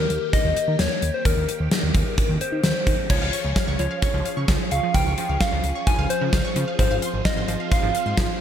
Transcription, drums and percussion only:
0.10 closed hi-hat medium
0.33 kick medium
0.33 closed hi-hat medium
0.57 closed hi-hat medium
0.79 snare loud
0.79 closed hi-hat medium
1.02 closed hi-hat medium
1.25 kick loud
1.25 closed hi-hat medium
1.49 closed hi-hat medium
1.71 snare loud
1.71 closed hi-hat medium
1.95 kick medium
1.95 closed hi-hat medium
2.18 kick medium
2.18 closed hi-hat medium
2.41 closed hi-hat medium
2.64 snare loud
2.64 closed hi-hat medium
2.87 kick medium
2.87 closed hi-hat medium
3.10 kick loud
3.10 crash medium
3.33 closed hi-hat medium
3.56 kick loud
3.56 snare loud
3.56 closed hi-hat medium
3.79 closed hi-hat medium
4.02 kick loud
4.02 closed hi-hat medium
4.25 closed hi-hat medium
4.48 kick loud
4.48 snare loud
4.48 closed hi-hat medium
4.71 closed hi-hat medium
4.94 kick loud
4.94 closed hi-hat medium
5.18 closed hi-hat medium
5.41 kick loud
5.41 snare loud
5.41 closed hi-hat medium
5.64 closed hi-hat medium
5.87 kick loud
5.87 closed hi-hat medium
6.10 closed hi-hat medium
6.33 kick loud
6.33 snare loud
6.33 closed hi-hat medium
6.56 closed hi-hat medium
6.79 kick loud
6.79 closed hi-hat medium
7.02 closed hi-hat medium
7.25 kick loud
7.25 snare loud
7.25 closed hi-hat medium
7.48 closed hi-hat medium
7.72 kick loud
7.72 closed hi-hat medium
7.95 closed hi-hat medium
8.17 kick loud
8.17 snare loud
8.17 closed hi-hat medium

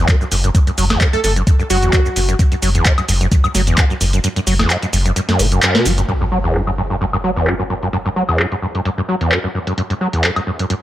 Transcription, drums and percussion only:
0.08 kick loud
0.08 clap loud
0.08 closed hi-hat medium
0.08 shaker soft
0.21 shaker soft
0.32 open hi-hat loud
0.32 shaker medium
0.44 closed hi-hat soft
0.44 shaker soft
0.55 kick loud
0.55 closed hi-hat medium
0.55 shaker soft
0.67 closed hi-hat soft
0.67 shaker soft
0.78 open hi-hat loud
0.78 shaker medium
0.90 snare medium
0.90 closed hi-hat medium
0.90 high woodblock medium
0.90 shaker soft
1.01 kick loud
1.01 clap loud
1.01 closed hi-hat medium
1.01 shaker soft
1.13 closed hi-hat soft
1.13 shaker soft
1.24 open hi-hat loud
1.24 shaker medium
1.36 closed hi-hat soft
1.36 shaker soft
1.47 kick loud
1.47 closed hi-hat medium
1.47 shaker soft
1.60 shaker soft
1.70 open hi-hat loud
1.70 shaker medium
1.83 closed hi-hat medium
1.83 shaker soft
1.93 kick loud
1.93 clap loud
1.93 closed hi-hat medium
1.93 shaker soft
2.06 shaker soft
2.16 open hi-hat loud
2.16 shaker medium
2.29 closed hi-hat medium
2.29 shaker soft
2.39 kick loud
2.39 closed hi-hat medium
2.39 shaker soft
2.52 closed hi-hat soft
2.52 shaker soft
2.62 open hi-hat medium
2.62 shaker medium
2.75 closed hi-hat medium
2.75 shaker soft
2.85 kick loud
2.85 clap loud
2.85 closed hi-hat medium
2.85 shaker soft
2.98 closed hi-hat soft
2.98 high woodblock medium
2.98 shaker soft
3.08 open hi-hat loud
3.08 shaker medium
3.21 closed hi-hat medium
3.21 shaker soft
3.32 kick loud
3.32 closed hi-hat medium
3.32 shaker soft
3.44 high woodblock medium
3.44 shaker soft
3.55 snare soft
3.55 open hi-hat medium
3.55 shaker medium
3.67 closed hi-hat medium
3.67 shaker soft
3.78 kick loud
3.78 clap loud
3.78 closed hi-hat medium
3.78 shaker soft
3.90 shaker soft
4.01 open hi-hat loud
4.01 shaker medium
4.13 closed hi-hat medium
4.13 shaker soft
4.24 closed hi-hat medium
4.24 shaker soft
4.36 closed hi-hat soft
4.36 shaker soft
4.47 open hi-hat medium
4.47 shaker medium
4.59 snare medium
4.59 high woodblock medium
4.59 shaker soft
4.70 clap loud
4.70 closed hi-hat medium
4.70 shaker soft
4.83 closed hi-hat soft
4.83 shaker soft
4.93 open hi-hat loud
4.93 shaker medium
5.06 closed hi-hat medium
5.06 shaker soft
5.16 closed hi-hat medium
5.16 shaker soft
5.29 snare medium
5.29 closed hi-hat soft
5.29 shaker soft
5.39 open hi-hat loud
5.39 shaker medium
5.52 closed hi-hat medium
5.52 shaker soft
5.62 clap loud
5.62 closed hi-hat medium
5.62 shaker soft
5.75 snare medium
5.75 closed hi-hat soft
5.75 shaker soft
5.85 open hi-hat loud
5.85 shaker medium
5.98 closed hi-hat medium
5.98 shaker soft
6.09 closed hi-hat medium
6.55 clap loud
6.55 closed hi-hat medium
6.67 closed hi-hat soft
6.67 high woodblock medium
6.90 closed hi-hat soft
7.01 closed hi-hat medium
7.13 high woodblock medium
7.36 closed hi-hat medium
7.47 clap loud
7.47 closed hi-hat medium
7.83 closed hi-hat soft
7.93 closed hi-hat medium
8.06 closed hi-hat soft
8.29 closed hi-hat soft
8.29 high woodblock medium
8.39 clap loud
8.39 closed hi-hat medium
8.52 closed hi-hat soft
8.75 closed hi-hat medium
8.85 closed hi-hat medium
9.21 closed hi-hat soft
9.32 clap loud
9.32 closed hi-hat medium
9.67 closed hi-hat soft
9.78 closed hi-hat medium
9.90 closed hi-hat soft
10.13 closed hi-hat soft
10.24 clap loud
10.24 closed hi-hat medium
10.36 closed hi-hat soft
10.36 high woodblock medium
10.59 closed hi-hat soft
10.70 closed hi-hat medium

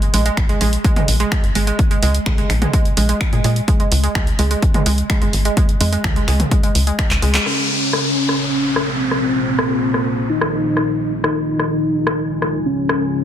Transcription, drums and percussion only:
0.02 closed hi-hat soft
0.14 open hi-hat loud
0.26 closed hi-hat soft
0.37 finger snap loud
0.37 kick loud
0.37 closed hi-hat medium
0.49 closed hi-hat soft
0.61 open hi-hat loud
0.73 closed hi-hat soft
0.84 kick loud
0.84 closed hi-hat medium
0.96 closed hi-hat soft
0.96 mid tom loud
1.08 open hi-hat loud
1.20 closed hi-hat soft
1.32 finger snap loud
1.32 kick loud
1.32 closed hi-hat medium
1.44 closed hi-hat soft
1.55 open hi-hat medium
1.67 closed hi-hat soft
1.79 kick loud
1.79 closed hi-hat medium
1.91 closed hi-hat soft
2.03 open hi-hat loud
2.15 closed hi-hat soft
2.26 finger snap loud
2.26 kick loud
2.26 closed hi-hat medium
2.26 mid tom medium
2.38 closed hi-hat soft
2.50 finger snap soft
2.50 open hi-hat medium
2.62 closed hi-hat soft
2.62 mid tom medium
2.73 kick loud
2.73 closed hi-hat medium
2.85 closed hi-hat soft
2.97 open hi-hat loud
3.09 closed hi-hat soft
3.21 finger snap loud
3.21 kick loud
3.21 closed hi-hat medium
3.33 closed hi-hat soft
3.44 open hi-hat medium
3.56 closed hi-hat soft
3.68 kick loud
3.68 closed hi-hat medium
3.80 closed hi-hat soft
3.92 open hi-hat loud
4.04 closed hi-hat soft
4.15 finger snap loud
4.15 kick loud
4.15 closed hi-hat medium
4.27 closed hi-hat soft
4.39 open hi-hat medium
4.51 closed hi-hat soft
4.62 kick loud
4.62 closed hi-hat medium
4.74 closed hi-hat soft
4.74 mid tom loud
4.86 open hi-hat loud
4.98 closed hi-hat soft
5.10 finger snap loud
5.10 kick loud
5.10 closed hi-hat medium
5.22 closed hi-hat soft
5.33 open hi-hat medium
5.45 closed hi-hat soft
5.57 kick loud
5.57 closed hi-hat medium
5.69 closed hi-hat soft
5.81 open hi-hat loud
5.93 closed hi-hat soft
6.04 finger snap loud
6.04 kick loud
6.04 closed hi-hat medium
6.04 mid tom medium
6.16 closed hi-hat soft
6.28 finger snap soft
6.28 open hi-hat medium
6.40 closed hi-hat soft
6.40 mid tom medium
6.51 kick loud
6.51 closed hi-hat medium
6.63 closed hi-hat soft
6.75 open hi-hat loud
6.87 closed hi-hat soft
6.99 finger snap loud
6.99 kick loud
6.99 closed hi-hat medium
7.11 clap medium
7.11 closed hi-hat soft
7.22 open hi-hat medium
7.34 clap loud
7.34 closed hi-hat soft
7.46 cross-stick soft
7.93 cross-stick medium
8.29 cross-stick soft
8.76 cross-stick medium
9.11 cross-stick soft
9.59 cross-stick medium
9.94 cross-stick soft
10.41 cross-stick medium
10.77 cross-stick soft
11.24 cross-stick medium
11.59 cross-stick medium
12.07 cross-stick medium
12.42 cross-stick medium
12.89 cross-stick medium

